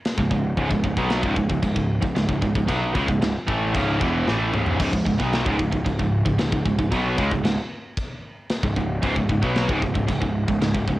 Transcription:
0.05 snare, china
0.18 picked electric bass C#1, distorted electric guitar C#2 G#2, kick
0.31 picked electric bass C#1, distorted electric guitar C#2 G#2, kick
0.57 picked electric bass C#1, distorted electric guitar C#2 G#2, kick, china
0.70 picked electric bass C#1, distorted electric guitar C#2 G#2, kick
0.84 picked electric bass C#1, distorted electric guitar C#2 G#2, kick
0.97 picked electric bass B1, distorted electric guitar B2 F#3 B3, kick
1.10 snare, china
1.23 picked electric bass C#1, distorted electric guitar C#2 G#2, kick
1.36 picked electric bass C#1, distorted electric guitar C#2 G#2, kick
1.49 picked electric bass C#1, distorted electric guitar C#2 G#2, kick
1.63 picked electric bass C#1, distorted electric guitar C#2 G#2, kick, china
1.76 picked electric bass C#1, distorted electric guitar C#2 G#2, kick
2.02 picked electric bass C#1, distorted electric guitar C#2 G#2, kick
2.16 picked electric bass C#1, distorted electric guitar C#2 G#2, snare, china
2.29 picked electric bass C#1, distorted electric guitar C#2 G#2, kick
2.42 picked electric bass C#1, distorted electric guitar C#2 G#2, kick
2.55 picked electric bass C#1, distorted electric guitar C#2 G#2, kick
2.67 picked electric bass B1, distorted electric guitar B2 F#3 B3, kick, china
2.93 picked electric bass C#2, distorted electric guitar C#3 G#3, kick
3.07 picked electric bass C#1, distorted electric guitar C#2 G#2, kick
3.21 picked electric bass C#1, distorted electric guitar C#2 G#2, snare, china
3.47 picked electric bass A1, distorted electric guitar A2 E3 A3, kick
3.73 picked electric bass C#1, distorted electric guitar C#2 G#2 C#3, kick, china
4.00 picked electric bass E1, distorted electric guitar E2 B2 E3, kick
4.26 picked electric bass A1, distorted electric guitar A2 E3 A3, snare
4.53 picked electric bass C#1, distorted electric guitar C#2 G#2 C#3, mid tom
4.66 floor tom
4.79 picked electric bass C#1, distorted electric guitar C#2 G#2, kick, china, splash, crash
4.93 picked electric bass C#1, distorted electric guitar C#2 G#2, kick
5.05 picked electric bass C#1, distorted electric guitar C#2 G#2, kick
5.18 picked electric bass B1, distorted electric guitar B2 F#3 B3, kick
5.33 snare, china
5.45 picked electric bass C#1, distorted electric guitar C#2 G#2, kick
5.58 picked electric bass C#1, distorted electric guitar C#2 G#2, kick
5.71 picked electric bass C#1, distorted electric guitar C#2 G#2, kick
5.84 picked electric bass C#1, distorted electric guitar C#2 G#2, kick, china
5.99 picked electric bass C#1, distorted electric guitar C#2 G#2, kick
6.25 picked electric bass C#1, distorted electric guitar C#2 G#2, kick
6.38 picked electric bass C#1, distorted electric guitar C#2 G#2, snare, china
6.52 picked electric bass C#1, distorted electric guitar C#2 G#2, kick
6.65 picked electric bass C#1, distorted electric guitar C#2 G#2, kick
6.78 picked electric bass C#1, distorted electric guitar C#2 G#2, kick
6.91 picked electric bass B1, distorted electric guitar B2 F#3 B3, kick, china
7.17 picked electric bass C#2, distorted electric guitar C#3 G#3, kick
7.31 picked electric bass C#1, distorted electric guitar C#2 G#2, kick
7.44 picked electric bass C#1, distorted electric guitar C#2 G#2, snare, china
7.97 kick, china
8.50 snare, china
8.63 picked electric bass C#1, distorted electric guitar C#2 G#2, kick
8.76 picked electric bass C#1, distorted electric guitar C#2 G#2, kick
9.02 picked electric bass C#1, distorted electric guitar C#2 G#2, kick, china
9.16 picked electric bass C#1, distorted electric guitar C#2 G#2, kick
9.29 picked electric bass C#1, distorted electric guitar C#2 G#2, kick
9.42 picked electric bass B1, distorted electric guitar B2 F#3 B3, kick
9.55 snare, china
9.69 picked electric bass C#1, distorted electric guitar C#2 G#2, kick
9.81 picked electric bass C#1, distorted electric guitar C#2 G#2, kick
9.94 picked electric bass C#1, distorted electric guitar C#2 G#2, kick
10.09 picked electric bass C#1, distorted electric guitar C#2 G#2, kick, china
10.22 picked electric bass C#1, distorted electric guitar C#2 G#2, kick
10.48 picked electric bass C#1, distorted electric guitar C#2 G#2, kick
10.61 picked electric bass C#1, distorted electric guitar C#2 G#2, snare, china
10.74 picked electric bass C#1, distorted electric guitar C#2 G#2, kick
10.88 picked electric bass C#1, distorted electric guitar C#2 G#2, kick

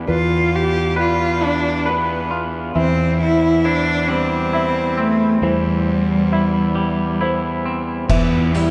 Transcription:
Already playing: clean electric guitar D4 B4
0.08 fingered electric bass E2, cello F4, felt piano B4
0.55 cello G4
0.96 cello F4, clean electric guitar B4, felt piano D5
1.41 clean electric guitar D4, cello D4
1.86 cello B3, clean electric guitar B4, felt piano B4
2.31 clean electric guitar F4
2.75 fingered electric bass E2, clean electric guitar E3, cello C4, felt piano E5
3.21 cello E4
3.65 cello D4, clean electric guitar E4, felt piano C5
4.09 clean electric guitar G3, cello C4
4.53 clean electric guitar E4, felt piano E5
4.97 cello A3, clean electric guitar C4
5.42 fingered electric bass E2, clean electric guitar E3, cello G3, felt piano C5
6.32 clean electric guitar E4, felt piano E5
6.75 clean electric guitar G3
7.21 clean electric guitar E4, felt piano C5
7.66 clean electric guitar C4
8.10 fingered electric bass E2, clean electric guitar E3, cello B3, felt piano E5, kick, crash
8.54 clean electric guitar G3, cello E4, closed hi-hat

